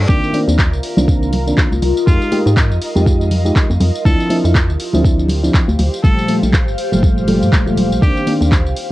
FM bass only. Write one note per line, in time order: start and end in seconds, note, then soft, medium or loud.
0.09 0.19 C2 medium
0.48 0.74 D#2 loud
0.72 0.80 C2 loud
0.97 1.53 C2 medium
1.72 1.80 C2 medium
1.82 1.93 C2 loud
2.07 2.18 F2 loud
2.46 2.72 G#2 medium
2.71 2.79 F2 loud
2.96 3.52 F2 medium
3.70 3.78 F2 medium
3.81 3.91 F2 medium
4.06 4.16 D2 loud
4.44 4.71 F2 loud
4.69 4.77 D2 loud
4.94 5.50 D2 medium
5.68 5.76 D2 medium
5.79 5.90 D2 loud
6.04 6.14 G1 medium
6.43 6.69 A#1 loud
6.68 6.76 G1 loud
6.92 7.43 G1 medium
7.42 7.54 G2 medium
7.53 7.93 D1 medium
7.91 7.99 A#1 medium
8.02 8.13 C2 loud
8.41 8.67 D#2 medium
8.66 8.74 C2 loud